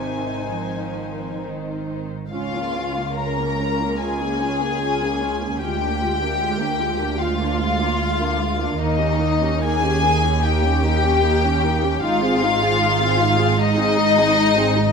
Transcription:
Already playing: G#1 C3 D#3 C4 D#4 C5 G#5
0.50 F3
1.41 D#3
2.31 C#2 C#4 F4 F5
2.54 A#3 C#4
2.75 C#4 F4
2.97 A#3 C#4
3.19 C#4 F4 A#4 A#5
3.40 A#3 C#4
3.60 C#4 F4
3.80 A#3 C#4
4.00 C#4 F4 G#4 G#5
4.21 A#3 C#4
4.42 C#4 F4
4.62 A#3 C#4
4.82 C#4 F4
5.02 A#3 C#4
5.23 C#4 F4
5.43 A#3 C#4
5.61 D2 G#3 F4 G4 G5
5.83 A#3 D4
6.02 G#3 F4
6.21 A#3 D4
6.40 G#3 F4
6.60 A#3 D4
6.80 G#3 F4
7.00 A#3 D4
7.19 G#3 F4 F5
7.41 A#3 D4
7.60 G#3 F4
7.81 A#3 D4
8.01 G#3 F4
8.20 A#3 D4
8.40 G#3 F4
8.59 A#3 D4
8.78 D#2 A#3 D#4 D#5
9.00 C#4 G4
9.20 A#3 D#4
9.43 C#4 G4
9.63 A#3 D#4 G#4 G#5
9.84 C#4 G4
10.04 A#3 D#4
10.24 C#4 G4
10.43 A#3 D#4 G4 G5
10.64 C#4 G4
10.84 A#3 D#4
11.03 C#4 G4
11.23 A#3 D#4
11.44 C#4 G4
11.63 A#3 D#4
11.83 C#4 G4
12.02 G#1 G#2 G#3 D#4 F4 F5
12.22 C4 G#4
12.42 G#3 D#4
12.62 C4 G#4
12.81 G#3 D#4
13.01 C4 G#4
13.20 G#3 D#4
13.38 C4 G#4
13.58 G#3 D#4 D#5
13.77 C4 G#4
13.97 G#3 D#4
14.17 C4 G#4
14.37 G#3 D#4
14.57 C4 G#4
14.76 G#3 D#4

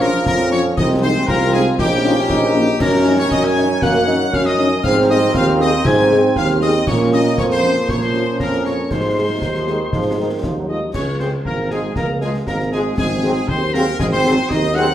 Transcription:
Already playing: A#1 F3 C#4 F4
0.01 F3 C#4 F4 A#4 A#5, snare
0.26 F2 A#4 A#5, concert bass drum, snare
0.40 snare
0.51 F3 C#4 F4 C#5 C#6, snare
0.77 C2 G#3 C4 D#4 D#5 D#6, concert bass drum, snare, crash
1.02 G#3 C4 D#4 C5 C6
1.27 C2 F4 A#4 A#5, concert bass drum, snare
1.41 snare
1.53 G#3 C4 D#4 G#4 G#5, snare
1.78 A#1 D#3 C#4 D#4 G4 G5, concert bass drum, snare
2.05 A#3 C#4 D#4 F4
2.30 A#1 D#4, concert bass drum, snare
2.54 A#3 C#4 D#4
2.80 F#2 D#3 C#4 A#4 A#5, concert bass drum, snare, crash
3.06 C#4 D#4
3.19 C#5 C#6
3.31 F#2 D#5 D#6, concert bass drum, snare
3.44 G#5 G#6, snare
3.56 C#4 D#4, snare
3.82 F#2 A#3 F#5 F#6, concert bass drum, snare
3.95 snare
4.07 C#4 D#4, snare
4.33 F#2 C#4 F5 F6, concert bass drum, snare
4.45 D#5 D#6, snare
4.58 C#4 D#4, snare
4.83 G#2 D#3 C4 F5 F6, concert bass drum, snare, crash
5.10 C4 D#4 G#4 D#5 D#6
5.34 D#2 F4 F5 F6, concert bass drum, snare
5.47 snare
5.60 C4 D#4 G#4 D#5 D#6, snare
5.85 G#2 D#4 G#5 G#6, concert bass drum, snare
5.98 snare
6.11 C4 D#4 G#4, snare
6.36 D#2 F5 F6, concert bass drum, snare
6.49 snare
6.62 C4 D#4 G#4 D#5 D#6, snare
6.87 A#2 F3 A#3 C#4 C#5 C#6, concert bass drum, snare, crash
7.13 C#4 F4 D#5 D#6
7.38 F2 F4 C#5 C#6, concert bass drum, snare
7.50 C5 C6, snare
7.63 C#4 F4, snare
7.88 A#2 C#4 C#5 C#6, concert bass drum, snare
8.01 C5 C6, snare
8.14 C#4 F4, snare
8.39 F2 A#4 A#5, concert bass drum, snare
8.52 snare
8.65 C#4 F4 C#5 C#6, snare
8.90 G#2 D#3 G#3 D#4 C5 C6, concert bass drum, snare, crash
9.17 G#3 D#4 G#4
9.41 D#2 D#3, concert bass drum, snare
9.54 F3, snare
9.67 D#3 G#3 D#4 G#4, snare
9.92 G#2 F3, concert bass drum, snare
10.18 D#3 G#3 D#4 G#4
10.42 D#2 F3, concert bass drum, snare
10.56 F#3
10.68 F3 G#3 D#4 G#4 D#5 D#6
10.94 C#2 C#4 C#5 C#6, concert bass drum, snare, crash
11.19 F3 G#3 C4 F4 G#4 C5 C6, snare
11.45 G#1 A#3 A#4 A#5, concert bass drum
11.70 F3 G#3 F4 G#4 G#5, snare
11.96 C#2 A#3 A#4 A#5, concert bass drum, snare
12.21 F3 G#3 F4 G#4 G#5, snare
12.34 snare
12.47 G#1 A#3 A#4 A#5, concert bass drum, snare
12.60 snare
12.72 F3 G#3 F4 G#4 G#5, snare
12.98 G#1 G#3 G#4 G#5, concert bass drum, snare, crash
13.23 F#3 C4 F#4 G#4, snare
13.48 D#2 C4 C5 C6, concert bass drum
13.74 F#3 A#3 C4 F#4 G#4 A#4 A#5, snare
13.99 G#1 G#3 G#4 G#5, concert bass drum, snare
14.11 C4 C5 C6
14.25 F#3 C4 F#4 G#4, snare
14.38 snare
14.49 D#2 D#4 D#5 D#6, concert bass drum, snare
14.63 snare
14.75 F#3 C4 F#4 G#4 F#5 F#6, snare

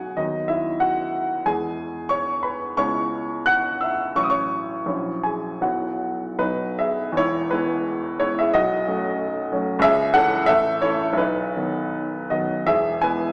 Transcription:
Already playing: B1 F#3 B3 D#4 F#4 G#4 F#5 G#5
0.17 D#2 F#3 B3 D#4 F#4 D#5
0.48 E4 E5
0.80 F#4 F#5
1.46 E2 G#3 B3 E4 G#4 G#5
2.09 C#5 C#6
2.43 B4 B5
2.77 C#2 G#3 B3 E4 C#5 C#6
3.46 F#5 F#6
3.81 E5 E6
4.16 A1 F#3 C#4 E4 C#6
4.23 D#6
4.30 C#5 C#6
4.86 A#1 F#3 C#4 E4
5.23 G#4 G#5
5.61 B1 F#3 B3 E4 F#4 F#5
6.39 B1 F#3 B3 D#4 B4
6.79 G#4 E5
7.12 E2
7.17 E1 E4 C#5
7.51 G#3 B3 E4 B4
8.20 G#3 B3 E4 C#5
8.39 G#4 E5
8.53 B1 F#4 D#5
8.88 F#3 A3 C#4
9.51 F#3 A3 C#4
9.79 C#2 E5
9.83 G#4
10.14 E3 G#3 C#4 A4 F#5
10.46 A1 A4 E5
10.82 E3 A3 C#4 E4 C#5
11.13 B1
11.17 D#4 B4
11.56 D#3 F#3 B3
12.30 D#3 F#3 B3 F#4 D#5
12.66 E1 E2 G#4 E5
13.02 E3 G#3 B3 B4 G#5

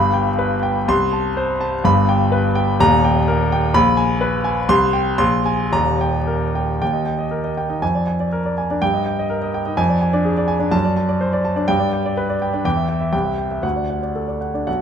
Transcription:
Already playing: G1 G2 B5
0.14 G5
0.39 B4
0.63 G5
0.88 C2 C6
1.13 A5
1.37 C5
1.61 A5
1.84 G1 G2 B5
2.09 G5
2.32 B4
2.55 G5
2.79 D#1 D#2 A#5
3.04 G5
3.28 A#4
3.52 G5
3.74 A#1 B5
3.97 G#5
4.21 B4
4.44 G#5
4.69 C2 C6
4.93 G5
5.18 A#1 C6
5.46 G#5
5.72 D#1 D#2 A#5
6.01 G5
6.27 A#4
6.55 G5
6.81 D#2 G5
6.93 D#5
7.06 G5
7.19 D#5
7.31 A#4
7.44 D#5
7.57 G5
7.69 D#4 D#5
7.82 F2 G#5
7.95 D5
8.07 G#5
8.20 D5
8.32 A#4
8.46 D5
8.58 G#5
8.71 D4 D5
8.82 G2 G5
8.94 D#5
9.06 G5
9.19 D#5
9.30 A#4
9.42 D#5
9.54 G5
9.66 D#4 D#5
9.77 F2 G#5
9.89 D5
10.02 G#5
10.13 D4 D5
10.25 G#4
10.37 D5
10.48 G#5
10.60 D4 D5
10.71 F#2 A5
10.85 D5
10.96 A5
11.09 D5
11.21 C5
11.33 D5
11.45 A5
11.56 D4 D5
11.68 G2 G5
11.80 D5
11.93 G5
12.06 D5
12.17 B4
12.30 D5
12.42 G5
12.53 D4 D5
12.65 E2 G5
12.76 E5
12.89 G5
13.01 E5
13.12 C2 G5
13.25 E5
13.38 G5
13.51 E5
13.63 D2 F#5
13.76 D5
13.90 F#5
14.03 D5
14.15 A4
14.28 D5
14.41 F#5
14.54 D4 D5
14.67 B1 F#5

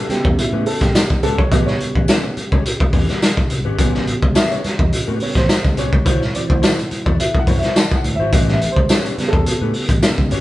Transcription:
Already playing: B2 C#4 G4 A4
0.09 C#3 G3 B3 G4, muted picked electric bass stroke, muted clean electric guitar stroke, snare, closed hi-hat
0.25 E2 D#4, kick
0.38 E4, muted picked electric bass stroke, muted clean electric guitar stroke, closed hi-hat
0.53 A2 C#4 G4 B4
0.66 A4, muted clean electric guitar stroke, open hi-hat
0.81 A1 G4, muted clean electric guitar stroke, kick, snare, closed hi-hat
0.95 snare, closed hi-hat, tambourine
1.10 muted picked electric bass stroke, muted clean electric guitar stroke, kick
1.23 C#2 C#4 G4 A4 B4, closed hi-hat
1.38 C#5, muted clean electric guitar stroke, kick
1.51 A1 C#3 G3 B3 C#4 G4 B4 D#5, kick, closed hi-hat
1.67 C#5, snare
1.80 muted clean electric guitar stroke, closed hi-hat
1.95 A1 C#4 G4 B4, kick
2.08 C#4 G4 B4, snare, closed hi-hat, tambourine
2.37 muted picked electric bass stroke, muted clean electric guitar stroke, closed hi-hat
2.52 C#2 C#4 G4 C#5, kick
2.65 muted clean electric guitar stroke, closed hi-hat
2.80 muted picked electric bass stroke, muted clean electric guitar stroke, kick
2.93 E2 C#4 G4 B4, kick, open hi-hat
3.09 C#4 G4 B4, snare, closed hi-hat
3.22 muted clean electric guitar stroke, snare, closed hi-hat, tambourine
3.37 muted clean electric guitar stroke, kick
3.50 C2, closed hi-hat
3.65 G#1 C#4 G4 B4
3.78 A1 B2 C#3 G3 C#4 G4 B4, kick, closed hi-hat
3.94 snare
4.07 closed hi-hat
4.22 C#2, muted clean electric guitar stroke, kick
4.35 C#4 G4 B4 E5, snare, closed hi-hat, tambourine
4.51 C#5, closed hi-hat
4.64 muted clean electric guitar stroke, muted picked electric bass stroke, snare, closed hi-hat
4.79 E2 D#5, muted clean electric guitar stroke, kick
4.92 muted clean electric guitar stroke, muted picked electric bass stroke, closed hi-hat
5.07 A2 C#4 G4 B4
5.20 C#3 G3 B3 C#5, muted clean electric guitar stroke, open hi-hat
5.35 A1 C5, kick, snare, closed hi-hat
5.49 snare, closed hi-hat, tambourine
5.64 C#2, muted clean electric guitar stroke, kick
5.77 C2 C#4 G4 B4 C#5, closed hi-hat
5.92 C#2, muted clean electric guitar stroke, kick
6.05 D2 C4 E4 F#4 C5, kick, closed hi-hat
6.21 snare
6.33 E3 F#3 C4 D5, muted clean electric guitar stroke, closed hi-hat
6.48 D2 E4 F#4 C5, kick
6.62 E4 F#4 C5, snare, closed hi-hat, tambourine
6.79 closed hi-hat
6.91 muted clean electric guitar stroke, muted picked electric bass stroke, closed hi-hat
7.06 E2 E4 F#4 D5, kick
7.19 E5, muted clean electric guitar stroke, closed hi-hat
7.35 muted picked electric bass stroke, muted clean electric guitar stroke, kick
7.39 F#5
7.47 F#2 E4 F#4 C5, kick, open hi-hat
7.58 E5
7.63 E4 F#4 C5, snare, closed hi-hat
7.76 A5, snare, closed hi-hat, tambourine
7.91 muted clean electric guitar stroke, kick
7.96 F#5
8.04 D2, closed hi-hat
8.15 G#1 E5
8.20 E4 F#4 C5
8.32 A1 B3 C#4 G4 B4 D#5, kick, closed hi-hat
8.48 snare
8.53 E5
8.61 closed hi-hat
8.72 C5
8.76 C#2, muted clean electric guitar stroke, kick
8.89 C#4 G4 B4 C#5, snare, closed hi-hat, tambourine
9.05 closed hi-hat
9.18 C#3 G3 B3, muted picked electric bass stroke, muted clean electric guitar stroke, snare, closed hi-hat
9.28 A4
9.33 E2, muted clean electric guitar stroke, kick
9.46 muted clean electric guitar stroke, muted picked electric bass stroke, closed hi-hat
9.61 A2 C#4 G4 B4
9.74 muted clean electric guitar stroke, open hi-hat
9.89 A1, muted clean electric guitar stroke, kick, closed hi-hat
10.03 C#3 G3 B3, snare, closed hi-hat, tambourine
10.18 C#2, muted clean electric guitar stroke, kick
10.31 G1 C#4 G4 B4 C#5, closed hi-hat

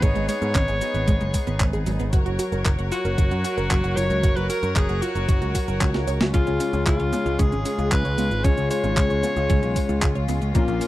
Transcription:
Already playing: B3 D#4 G#4
0.02 G#1 G#3 C#5, kick, closed hi-hat, cabasa
0.15 G#1 G#3, closed hi-hat, cabasa
0.29 G#3 C#5, open hi-hat, cabasa
0.42 G#2 B3, closed hi-hat, cabasa
0.55 G#1 C#4, kick, clap, closed hi-hat, cabasa
0.68 G#1 G#4, closed hi-hat, cabasa
0.81 F#3, open hi-hat, cabasa
0.94 G#1 B3, closed hi-hat, cabasa
1.08 G#1 G#3, kick, closed hi-hat, cabasa
1.21 F#1 G#3, closed hi-hat, cabasa
1.34 G#3, kick, open hi-hat, cabasa
1.47 G#1 B3, closed hi-hat, cabasa
1.60 G#1 C#4, kick, clap, closed hi-hat, cabasa
1.73 G#1 G#4, closed hi-hat, cabasa
1.86 G#1 F#3, open hi-hat, cabasa
2.00 G#1 B3, closed hi-hat, cabasa
2.13 F#1 F#3 F#4 A#4 C#5, kick, closed hi-hat, cabasa
2.26 F#1 F#4, closed hi-hat, cabasa
2.39 F#4, open hi-hat, cabasa
2.52 F#1 A#4, closed hi-hat, cabasa
2.65 F#1 A#4, kick, clap, closed hi-hat, cabasa
2.79 F#1 F#5, closed hi-hat, cabasa
2.92 F4 F#4, open hi-hat, cabasa
3.05 F#1 A#4, closed hi-hat, cabasa
3.18 F#1 F#4, kick, closed hi-hat, cabasa
3.31 F#2 F#4, closed hi-hat, cabasa
3.44 F#4, open hi-hat, cabasa
3.58 F#1 A#4, closed hi-hat, cabasa
3.71 F#1 A#4, kick, clap, closed hi-hat, cabasa
3.84 F#1 F#5, closed hi-hat, cabasa
3.97 F#1 F4 C#5, open hi-hat, cabasa
4.10 C#2 A#4, closed hi-hat, cabasa
4.23 F#1 F#4, kick, closed hi-hat, cabasa
4.36 F#1 F#4 B4, closed hi-hat, cabasa
4.49 F#4 A#4, open hi-hat, cabasa
4.63 F#2 A#4, closed hi-hat, cabasa
4.76 F#1 G#4 A#4, kick, clap, closed hi-hat, cabasa
4.89 F#1 F#5, closed hi-hat, cabasa
5.02 F4 F#4, open hi-hat, cabasa
5.15 F#1 A#4, closed hi-hat, cabasa
5.28 F#1 F#4, kick, closed hi-hat, cabasa
5.42 C#2 F#4, closed hi-hat, cabasa
5.55 F#4, kick, open hi-hat, cabasa
5.68 F#1 A#4, closed hi-hat, cabasa
5.81 C#2 C#4, kick, clap, closed hi-hat, cabasa
5.94 C#2 F#4, snare, closed hi-hat, cabasa
6.07 C#2 C#5, open hi-hat, cabasa
6.21 C#2 F#3, snare, closed hi-hat, cabasa
6.34 C#2 C#3 G#3 C#4 F4 G#4, kick, closed hi-hat, cabasa
6.47 C#2 C#4, closed hi-hat, cabasa
6.60 C#4, open hi-hat, cabasa
6.73 C#2 C#3 G#3 C#4 F4 G#4, closed hi-hat, cabasa
6.87 C#2 F4, kick, clap, closed hi-hat, cabasa
7.00 C#2 C#5, closed hi-hat, cabasa
7.13 C#3 G#3 B3 C#4 F4 G#4, open hi-hat, cabasa
7.26 C#2 F4, closed hi-hat, cabasa
7.39 C#2 C#4 G#4, kick, closed hi-hat, cabasa
7.52 G#1 C#4, closed hi-hat, cabasa
7.65 C#4, open hi-hat, cabasa
7.79 C#2 F4, closed hi-hat, cabasa
7.92 C#2 F4 B4, kick, clap, closed hi-hat, cabasa
8.05 C#2 C#5, closed hi-hat, cabasa
8.18 C#2 B3, open hi-hat, cabasa
8.31 G#1 F4, closed hi-hat, cabasa
8.44 C#2 C#3 G#3 C#4 F4 G#4 C#5, kick, closed hi-hat, cabasa
8.58 C#2 C#4, closed hi-hat, cabasa
8.71 C#4 C#5, open hi-hat, cabasa
8.84 G#1 C#3 G#3 C#4 F4 G#4, closed hi-hat, cabasa
8.97 C#2 F4, kick, clap, closed hi-hat, cabasa
9.10 C#2 C#5, closed hi-hat, cabasa
9.23 C#3 G#3 B3 C#4 F4 G#4, open hi-hat, cabasa
9.37 C#2 F4, closed hi-hat, cabasa
9.50 C#2 C#4, kick, closed hi-hat, cabasa
9.63 B1 C#4, closed hi-hat, cabasa
9.76 C#4, kick, open hi-hat, cabasa
9.89 C#2 F4, closed hi-hat, cabasa
10.02 C#2 F4, kick, clap, closed hi-hat, cabasa
10.15 C#2 C#5, closed hi-hat, cabasa
10.29 C#2 B3, open hi-hat, cabasa
10.42 C#2 F4, closed hi-hat, cabasa
10.55 A#1 A#2 A#3 C#4 F4 A#4, kick, closed hi-hat, cabasa
10.68 A#1 A#3, closed hi-hat, cabasa
10.81 A#3, open hi-hat, cabasa

